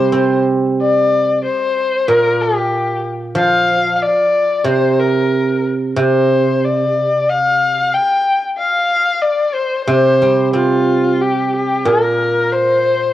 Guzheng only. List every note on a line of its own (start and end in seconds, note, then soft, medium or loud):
0.00 1.44 C3 medium
0.00 1.11 G3 soft
0.12 1.45 C4 medium
2.08 4.01 A#2 soft
3.35 5.31 F3 medium
4.64 5.95 C3 medium
5.96 7.94 C3 soft
9.87 11.86 C3 medium
10.22 11.54 G3 soft
10.53 11.87 C4 soft
11.85 13.13 A#2 medium